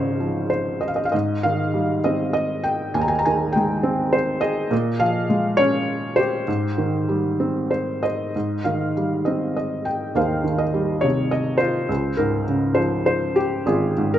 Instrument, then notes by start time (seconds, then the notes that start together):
felt piano
Already playing: G#1 G#2 C#3 F3 C5 C#5 D#5 F5
0.20 F3
0.50 C5
0.81 D#5
0.88 F5
0.96 D#5
1.05 F5
1.12 G#2 D#5
1.43 D#3 F5
1.74 G3
2.04 C4 D#5
2.33 D#5
2.64 G5
2.94 D#2 G#5
3.01 A#5
3.08 G#5
3.19 A#5
3.25 D#3 G#5
3.52 G#3 G5
3.83 C4
4.13 C5
4.41 G#4 D#5
4.71 A#2
5.00 F3 F5
5.30 G#3
5.57 C#4 C#5
6.16 G4 C5
6.48 G#2
6.78 D#3
7.09 G3
7.40 C4
7.71 C5
8.03 C5 D#5
8.36 G#2
8.64 D#3 F5
8.97 G3
9.25 C4 D#5
9.57 D#5
9.85 G5
10.15 D#2 C5 F5
10.44 D#3
10.58 D#5
10.74 G3
11.01 C3 C#5
11.31 D#5
11.58 F4 C5
11.89 C#2
12.17 G#2 A#4
12.48 C#3
12.75 F3 C5
13.06 C5
13.36 G4
13.66 G#1 F4 G#4
13.98 G#2
14.14 A#4